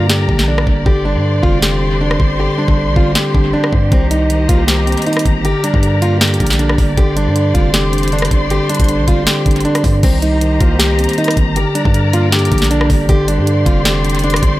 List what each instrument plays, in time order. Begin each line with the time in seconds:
Already playing: 808-style bass G2, tine electric piano D3 G3 A#3, string section G4 A#4 D5 A#5
0.10 tine electric piano D3, steel-string acoustic guitar G4, snare
0.29 808-style bass A#1, tine electric piano D4, kick
0.39 snare
0.48 tine electric piano D3, steel-string acoustic guitar D4
0.58 cross-stick
0.67 808-style bass G1, kick
0.86 808-style bass G1, tine electric piano D3, steel-string acoustic guitar G4, string section C5 C6, kick
1.05 tine electric piano G3, steel-string acoustic guitar D4
1.15 808-style bass G2
1.24 tine electric piano D3
1.43 808-style bass F1, tine electric piano C4, steel-string acoustic guitar F4, kick
1.62 tine electric piano D3, steel-string acoustic guitar G4, snare
1.82 tine electric piano D4
2.01 tine electric piano D3, steel-string acoustic guitar D4
2.11 cross-stick
2.20 808-style bass G1, kick
2.39 tine electric piano D3, steel-string acoustic guitar G4
2.58 tine electric piano G3, steel-string acoustic guitar D4
2.68 808-style bass G1, kick
2.77 tine electric piano D3
2.87 808-style bass A#1
2.96 808-style bass G1, tine electric piano C4, steel-string acoustic guitar F4, kick
3.15 tine electric piano D3, steel-string acoustic guitar G4, snare
3.34 808-style bass G1, tine electric piano D4, kick
3.53 tine electric piano D3, steel-string acoustic guitar D4
3.64 cross-stick
3.73 808-style bass G2, kick
3.92 808-style bass C2, tine electric piano D#3, steel-string acoustic guitar C4, string section C5 D#5 A#5, kick, closed hi-hat
4.11 tine electric piano G3, steel-string acoustic guitar D#4, closed hi-hat
4.30 tine electric piano D#3, closed hi-hat
4.49 808-style bass C2, tine electric piano A#3, steel-string acoustic guitar F4, kick, closed hi-hat
4.68 tine electric piano D#3, steel-string acoustic guitar G4, snare, closed hi-hat
4.87 tine electric piano C4, closed hi-hat
4.92 closed hi-hat
4.97 closed hi-hat
5.02 closed hi-hat
5.06 tine electric piano D#3, steel-string acoustic guitar D#4, closed hi-hat
5.13 cross-stick, closed hi-hat
5.19 closed hi-hat
5.25 808-style bass G1, kick, closed hi-hat
5.45 tine electric piano D3, steel-string acoustic guitar G4, string section A#4 D5, closed hi-hat
5.64 tine electric piano G3, steel-string acoustic guitar D4, closed hi-hat
5.74 808-style bass G2, kick
5.83 tine electric piano D3, closed hi-hat
6.02 tine electric piano A#3, steel-string acoustic guitar F4, closed hi-hat
6.21 tine electric piano D3, steel-string acoustic guitar G4, snare, closed hi-hat
6.27 closed hi-hat
6.34 closed hi-hat
6.40 808-style bass A#1, tine electric piano D4, kick, closed hi-hat
6.47 snare, closed hi-hat
6.53 closed hi-hat
6.59 tine electric piano D3, steel-string acoustic guitar D4, closed hi-hat
6.69 cross-stick
6.78 808-style bass G1, kick, open hi-hat
6.97 808-style bass G1, tine electric piano D3, steel-string acoustic guitar G4, string section C5 C6, kick, closed hi-hat
7.17 tine electric piano G3, steel-string acoustic guitar D4, closed hi-hat
7.27 808-style bass G2
7.36 tine electric piano D3, closed hi-hat
7.54 808-style bass F1, tine electric piano C4, steel-string acoustic guitar F4, kick, closed hi-hat
7.74 tine electric piano D3, steel-string acoustic guitar G4, snare, closed hi-hat
7.93 tine electric piano D4, closed hi-hat
7.98 closed hi-hat
8.03 closed hi-hat
8.08 closed hi-hat
8.12 tine electric piano D3, steel-string acoustic guitar D4, closed hi-hat
8.19 cross-stick, closed hi-hat
8.25 closed hi-hat
8.31 808-style bass G1, kick, closed hi-hat
8.50 tine electric piano D3, steel-string acoustic guitar G4, closed hi-hat
8.69 tine electric piano G3, steel-string acoustic guitar D4, closed hi-hat
8.75 closed hi-hat
8.80 808-style bass G1, kick, closed hi-hat
8.84 closed hi-hat
8.89 tine electric piano D3, closed hi-hat
8.99 808-style bass A#1
9.08 808-style bass G1, tine electric piano C4, steel-string acoustic guitar F4, kick, closed hi-hat
9.27 tine electric piano D3, steel-string acoustic guitar G4, snare, closed hi-hat
9.46 808-style bass G1, tine electric piano D4, kick, closed hi-hat
9.51 closed hi-hat
9.56 closed hi-hat
9.61 closed hi-hat
9.65 tine electric piano D3, steel-string acoustic guitar D4, closed hi-hat
9.75 cross-stick, closed hi-hat
9.84 808-style bass G2, kick, open hi-hat
10.03 808-style bass C2, tine electric piano D#3, steel-string acoustic guitar C4, string section G4 C5 D#5 A#5, kick, closed hi-hat, crash
10.22 tine electric piano G3, steel-string acoustic guitar D#4, closed hi-hat
10.41 tine electric piano D#3, closed hi-hat
10.60 808-style bass C2, tine electric piano A#3, steel-string acoustic guitar F4, kick, closed hi-hat
10.79 tine electric piano D#3, steel-string acoustic guitar G4, snare, closed hi-hat
10.99 tine electric piano C4, closed hi-hat
11.04 closed hi-hat
11.09 closed hi-hat
11.13 closed hi-hat
11.18 tine electric piano D#3, steel-string acoustic guitar D#4, closed hi-hat
11.24 cross-stick, closed hi-hat
11.31 closed hi-hat
11.37 808-style bass G1, kick, closed hi-hat
11.56 tine electric piano D3, string section G4 A#4 D5, steel-string acoustic guitar G4, closed hi-hat
11.75 tine electric piano G3, steel-string acoustic guitar D4, closed hi-hat
11.85 808-style bass G2, kick
11.94 tine electric piano D3, closed hi-hat
12.13 tine electric piano A#3, steel-string acoustic guitar F4, closed hi-hat
12.32 tine electric piano D3, steel-string acoustic guitar G4, snare, closed hi-hat
12.39 closed hi-hat
12.45 closed hi-hat
12.52 808-style bass A#1, tine electric piano D4, kick, closed hi-hat
12.58 snare, closed hi-hat
12.64 closed hi-hat
12.71 tine electric piano D3, steel-string acoustic guitar D4, closed hi-hat
12.81 cross-stick
12.90 808-style bass G1, kick, open hi-hat
13.09 808-style bass G1, tine electric piano D3, steel-string acoustic guitar G4, string section C5 D5 C6, kick, closed hi-hat
13.28 tine electric piano G3, steel-string acoustic guitar D4, closed hi-hat
13.38 808-style bass G2
13.47 tine electric piano D3, closed hi-hat
13.66 808-style bass F1, tine electric piano C4, steel-string acoustic guitar F4, kick, closed hi-hat
13.85 tine electric piano D3, steel-string acoustic guitar G4, snare, closed hi-hat
14.04 tine electric piano D4, closed hi-hat
14.10 closed hi-hat
14.15 closed hi-hat
14.19 closed hi-hat
14.24 tine electric piano D3, steel-string acoustic guitar D4, closed hi-hat
14.30 cross-stick, closed hi-hat
14.36 closed hi-hat
14.43 808-style bass G1, kick, closed hi-hat